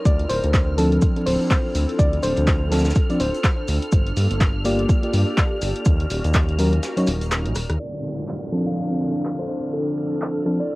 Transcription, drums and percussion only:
0.05 kick, closed hi-hat, shaker
0.19 closed hi-hat
0.30 open hi-hat, shaker
0.44 closed hi-hat
0.54 kick, snare, clap, closed hi-hat, shaker
0.78 open hi-hat, shaker
0.92 closed hi-hat
1.02 kick, closed hi-hat, shaker
1.16 closed hi-hat
1.27 open hi-hat
1.51 kick, snare, clap, closed hi-hat, shaker
1.75 open hi-hat, shaker
1.89 closed hi-hat
1.99 kick, closed hi-hat, shaker
2.13 closed hi-hat
2.23 open hi-hat, shaker
2.37 closed hi-hat
2.47 kick, snare, clap, closed hi-hat, shaker
2.72 snare, open hi-hat, shaker
2.78 snare, shaker
2.85 snare, closed hi-hat, shaker
2.90 snare, shaker
2.95 kick, closed hi-hat, shaker
3.10 closed hi-hat
3.20 open hi-hat, shaker
3.35 closed hi-hat
3.44 kick, snare, clap, closed hi-hat, shaker
3.68 open hi-hat, shaker
3.82 closed hi-hat
3.92 kick, closed hi-hat, shaker
4.07 closed hi-hat
4.17 open hi-hat, shaker
4.31 closed hi-hat
4.41 kick, snare, clap, closed hi-hat, shaker
4.65 open hi-hat, shaker
4.79 closed hi-hat
4.89 kick, closed hi-hat, shaker
5.03 closed hi-hat
5.13 open hi-hat, shaker
5.37 kick, snare, clap, closed hi-hat, shaker
5.62 open hi-hat, shaker
5.76 closed hi-hat
5.85 kick, closed hi-hat, shaker
6.00 closed hi-hat
6.10 open hi-hat, shaker
6.24 closed hi-hat
6.34 kick, snare, clap, closed hi-hat, shaker
6.49 closed hi-hat
6.59 open hi-hat, shaker
6.73 closed hi-hat
6.83 snare, closed hi-hat, shaker
6.97 closed hi-hat
7.07 open hi-hat, shaker
7.21 closed hi-hat
7.31 cross-stick, snare, clap, closed hi-hat, shaker
7.45 closed hi-hat
7.55 cross-stick, open hi-hat, shaker
7.69 cross-stick, closed hi-hat
7.80 crash, shaker
8.04 shaker
8.18 shaker
8.28 clap
8.52 shaker
8.66 shaker
8.76 shaker
9.01 shaker
9.15 shaker
9.25 clap
9.49 shaker
9.63 shaker
9.73 shaker
9.97 shaker
10.12 shaker
10.22 clap
10.46 shaker
10.60 shaker
10.70 shaker

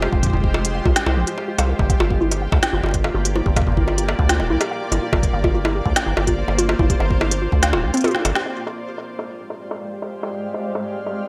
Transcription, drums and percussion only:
0.02 high bongo
0.13 kick
0.23 kick, closed hi-hat
0.26 kick
0.30 kick
0.33 kick
0.37 kick
0.40 kick
0.44 kick
0.54 high bongo
0.65 closed hi-hat
0.85 kick, high bongo
0.96 snare, closed hi-hat
1.06 high bongo
1.27 closed hi-hat
1.38 high bongo
1.59 closed hi-hat, high bongo
1.79 kick, high bongo
1.90 kick, closed hi-hat
2.00 high bongo
2.10 kick
2.31 closed hi-hat, high bongo
2.52 kick, high bongo
2.63 snare, closed hi-hat
2.83 high bongo
2.86 high bongo
2.89 high bongo
2.91 kick, closed hi-hat, high bongo
3.04 high bongo
3.25 closed hi-hat
3.36 high bongo
3.46 kick
3.56 kick, closed hi-hat, high bongo
3.62 kick
3.67 kick
3.72 kick
3.77 kick
3.88 high bongo
3.98 closed hi-hat
4.08 high bongo
4.19 kick
4.29 snare, closed hi-hat
4.40 high bongo
4.61 closed hi-hat, high bongo
4.92 closed hi-hat, high bongo
5.13 kick, high bongo
5.23 kick, closed hi-hat
5.44 kick, high bongo
5.65 high bongo
5.86 kick
5.96 snare, closed hi-hat, high bongo
6.17 high bongo
6.27 kick, closed hi-hat
6.48 high bongo
6.59 closed hi-hat
6.69 high bongo
6.79 kick
6.90 kick, closed hi-hat
7.00 high bongo
7.11 kick
7.21 high bongo
7.31 closed hi-hat
7.52 kick
7.63 snare, closed hi-hat
7.73 high bongo
7.94 closed hi-hat
7.97 closed hi-hat
8.01 closed hi-hat
8.04 closed hi-hat, high tom, high bongo
8.08 closed hi-hat
8.15 snare
8.25 closed hi-hat, high bongo
8.35 snare
8.46 high bongo
8.67 high bongo
8.98 high bongo
9.19 high bongo
9.50 high bongo
9.71 high bongo
10.02 high bongo
10.23 high bongo
10.54 high bongo
10.75 high bongo
11.06 high bongo

